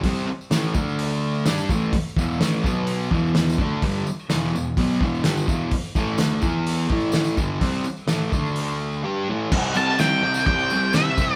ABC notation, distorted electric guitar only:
X:1
M:4/4
L:1/8
Q:1/4=127
K:Em
V:1 name="Distorted electric guitar" clef=bass
[C,G,C] z [A,,E,A,] [D,A,D]3 [G,DG] [A,,E,A,] | z [E,,B,,E,] [A,,E,A,] [B,,F,B,]2 [E,,B,,E,]2 [D,A,D] | [G,,D,G,] z [E,,B,,E,] [E,,B,,] [B,,F,B,] [E,,B,,E,] [G,,D,G,] [E,,B,,E,] | z [A,,E,A,] [D,A,D] [E,B,E]2 [A,,E,A,]2 [G,,D,G,] |
[C,G,C] z [A,,E,A,] [D,A,D]3 [G,DG] [A,,E,A,] | [C,G,C] [C,G,C] [C,G,C] [C,G,C] [C,G,C] [C,G,C] [C,G,C] [C,G,C] |]